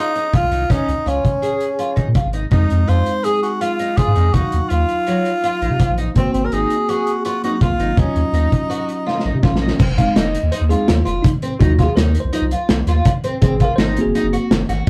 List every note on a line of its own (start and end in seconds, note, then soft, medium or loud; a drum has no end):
0.00 0.38 D#4 medium
0.15 0.26 D#4 medium
0.15 closed hi-hat soft
0.33 0.44 F4 medium
0.33 0.73 F4 medium
0.33 kick medium
0.33 closed hi-hat medium
0.43 0.50 C2 medium
0.51 0.65 C2 medium
0.51 0.62 D#4 medium
0.51 closed hi-hat soft
0.70 0.77 C#2 medium
0.70 0.91 C#4 medium
0.70 1.10 D#4 medium
0.70 kick medium
0.70 closed hi-hat medium
0.88 0.95 C#2 medium
0.88 closed hi-hat soft
1.06 1.20 C#2 medium
1.06 2.08 C#4 medium
1.06 1.28 F4 medium
1.06 closed hi-hat medium
1.25 kick medium
1.25 closed hi-hat medium
1.42 1.64 G#4 medium
1.42 closed hi-hat medium
1.60 closed hi-hat soft
1.79 1.90 F4 medium
1.79 closed hi-hat medium
1.96 2.04 G#1 medium
1.96 2.07 D#4 medium
1.96 kick medium
1.96 closed hi-hat soft
2.08 2.14 A#2 medium
2.15 2.26 F4 medium
2.15 kick medium
2.15 closed hi-hat medium
2.25 2.46 G#1 medium
2.33 2.44 D#4 medium
2.33 closed hi-hat soft
2.50 2.66 F2 medium
2.50 4.30 G#3 soft
2.50 4.31 C4 soft
2.50 2.73 D#4 medium
2.50 2.91 D#4 medium
2.50 4.31 D#4 medium
2.50 kick medium
2.50 closed hi-hat medium
2.70 2.84 F2 medium
2.70 closed hi-hat soft
2.88 3.02 F2 medium
2.88 3.09 F4 medium
2.88 3.26 C5 medium
2.88 closed hi-hat medium
3.06 closed hi-hat soft
3.24 3.42 G#4 medium
3.24 3.46 G#4 medium
3.24 closed hi-hat medium
3.43 3.63 F#4 medium
3.43 closed hi-hat soft
3.61 3.72 F4 medium
3.61 3.99 F4 medium
3.61 closed hi-hat medium
3.79 3.90 D#4 medium
3.79 closed hi-hat medium
3.97 4.08 F4 medium
3.97 4.35 G#4 medium
3.97 kick medium
3.97 closed hi-hat medium
4.07 4.14 G#2 medium
4.15 4.30 F2 medium
4.15 4.26 D#4 medium
4.15 closed hi-hat soft
4.33 4.41 D#2 medium
4.33 6.12 F#3 soft
4.33 4.55 D#4 medium
4.33 6.13 D#4 soft
4.33 4.70 F#4 medium
4.33 6.13 F5 medium
4.33 kick medium
4.33 closed hi-hat medium
4.52 4.60 D#2 medium
4.52 closed hi-hat soft
4.69 4.85 D#2 medium
4.69 5.97 F4 medium
4.69 4.92 F4 medium
4.69 closed hi-hat medium
4.89 closed hi-hat soft
5.07 5.29 F#3 medium
5.07 closed hi-hat medium
5.25 closed hi-hat soft
5.44 5.54 F4 medium
5.44 closed hi-hat medium
5.62 5.69 A#1 medium
5.62 5.73 D#4 medium
5.62 closed hi-hat soft
5.71 5.77 C3 medium
5.79 5.91 F4 medium
5.79 6.14 C5 medium
5.79 kick medium
5.79 closed hi-hat medium
5.89 6.09 A#1 medium
5.98 6.09 D#4 medium
5.98 closed hi-hat soft
6.15 6.30 G#1 medium
6.15 7.40 A#3 medium
6.15 7.41 C4 soft
6.15 6.38 C4 medium
6.15 6.33 C4 medium
6.15 7.42 F#4 medium
6.15 kick medium
6.15 closed hi-hat medium
6.33 6.48 G#1 medium
6.33 6.47 C4 medium
6.33 closed hi-hat soft
6.45 6.55 A#4 medium
6.52 6.66 G#1 medium
6.52 6.74 D#4 medium
6.52 6.91 G#4 medium
6.52 closed hi-hat medium
6.70 closed hi-hat medium
6.89 7.25 F#4 medium
6.89 7.10 G#4 medium
6.89 closed hi-hat medium
7.07 closed hi-hat soft
7.25 7.36 F4 medium
7.25 7.42 F#4 medium
7.25 closed hi-hat medium
7.42 7.95 F#3 soft
7.42 7.97 A#3 soft
7.42 7.98 C4 soft
7.42 7.55 D#4 medium
7.42 7.54 F#4 medium
7.42 closed hi-hat medium
7.54 7.63 F#4 medium
7.61 8.01 F4 medium
7.61 7.73 F4 medium
7.61 kick medium
7.61 closed hi-hat medium
7.70 7.77 C2 medium
7.79 7.93 G#1 medium
7.79 7.91 D#4 medium
7.79 closed hi-hat soft
7.96 8.04 D#2 medium
7.96 9.39 F#3 medium
7.96 9.40 C#4 soft
7.96 8.19 C#4 medium
7.96 9.44 D#4 medium
7.96 9.41 F4 medium
7.96 kick medium
7.96 closed hi-hat medium
8.16 8.23 D#2 medium
8.16 closed hi-hat soft
8.33 8.47 D#2 medium
8.33 8.55 D#4 medium
8.33 closed hi-hat medium
8.52 kick medium
8.52 closed hi-hat soft
8.70 8.91 F#4 medium
8.70 closed hi-hat medium
8.89 closed hi-hat soft
9.06 9.17 F4 medium
9.06 snare soft
9.19 snare soft
9.25 9.32 A#1 medium
9.25 9.36 D#4 medium
9.35 9.41 C3 medium
9.42 9.79 F#3 soft
9.42 9.79 C#4 soft
9.42 9.54 F4 medium
9.42 9.80 F4 medium
9.42 kick medium
9.42 snare medium
9.53 9.73 A#1 medium
9.53 snare medium
9.61 9.72 D#4 medium
9.68 snare medium
9.79 10.07 F1 loud
9.79 9.90 C4 medium
9.79 kick loud
9.79 crash medium
9.97 10.22 G#3 soft
9.97 10.22 C4 soft
9.97 10.22 D#4 medium
9.97 10.08 F4 medium
9.97 10.17 F5 medium
9.97 kick medium
9.97 closed hi-hat medium
10.16 10.37 F1 medium
10.16 10.37 D#4 medium
10.16 10.53 D#5 medium
10.16 snare medium
10.16 closed hi-hat medium
10.35 closed hi-hat medium
10.43 10.50 D#2 medium
10.52 10.63 D#4 medium
10.52 10.60 C5 medium
10.52 closed hi-hat medium
10.61 10.75 D#2 medium
10.69 10.86 G#3 soft
10.69 10.87 C4 soft
10.69 10.87 D#4 soft
10.69 10.91 F4 medium
10.69 10.88 G#4 medium
10.69 closed hi-hat medium
10.88 11.03 D#2 medium
10.88 11.04 F4 medium
10.88 snare loud
10.88 closed hi-hat medium
11.05 11.20 F1 medium
11.05 11.25 F4 medium
11.05 11.27 F4 medium
11.05 closed hi-hat medium
11.22 11.31 D#4 medium
11.22 kick loud
11.22 closed hi-hat medium
11.42 11.53 C4 medium
11.42 closed hi-hat medium
11.59 11.88 D#2 loud
11.59 11.84 F#3 soft
11.59 11.85 D#4 soft
11.59 11.72 D#4 medium
11.59 11.85 F4 medium
11.59 11.85 F#4 medium
11.59 kick loud
11.59 closed hi-hat medium
11.79 11.89 F4 medium
11.79 kick medium
11.79 snare soft
11.79 closed hi-hat medium
11.83 11.97 G#4 medium
11.96 12.17 D#2 loud
11.96 12.18 D#4 medium
11.96 12.21 A#4 medium
11.96 snare medium
11.96 closed hi-hat medium
12.15 closed hi-hat medium
12.20 12.54 C5 medium
12.25 12.31 C2 medium
12.33 12.50 F#3 soft
12.33 12.44 D#4 medium
12.33 12.50 D#4 soft
12.33 12.50 F4 soft
12.33 closed hi-hat medium
12.42 12.56 C2 medium
12.51 12.73 F4 medium
12.51 closed hi-hat medium
12.69 12.83 C2 medium
12.69 snare medium
12.69 closed hi-hat medium
12.87 13.01 D#2 medium
12.87 13.09 F4 medium
12.87 snare soft
12.87 closed hi-hat medium
13.05 kick loud
13.05 closed hi-hat medium
13.24 13.35 C4 medium
13.24 closed hi-hat medium
13.42 13.70 G#1 loud
13.42 13.53 C4 medium
13.42 13.67 G#4 medium
13.42 kick medium
13.42 closed hi-hat medium
13.60 13.71 F4 medium
13.60 kick medium
13.60 closed hi-hat medium
13.64 13.78 A#4 medium
13.76 13.98 G#1 loud
13.76 14.00 D#4 medium
13.76 14.00 C5 medium
13.76 snare medium
13.76 closed hi-hat medium
13.97 14.49 A#3 soft
13.97 14.49 C4 soft
13.97 14.49 F#4 medium
13.97 closed hi-hat medium
14.01 14.36 G#4 medium
14.06 14.13 F#1 medium
14.15 14.26 D#4 medium
14.15 closed hi-hat medium
14.24 14.37 F#1 medium
14.33 14.54 F#4 medium
14.33 closed hi-hat soft
14.51 14.64 F#1 medium
14.51 snare loud
14.51 closed hi-hat medium
14.69 14.83 G#1 medium
14.69 14.90 F#4 medium
14.69 snare soft
14.69 closed hi-hat medium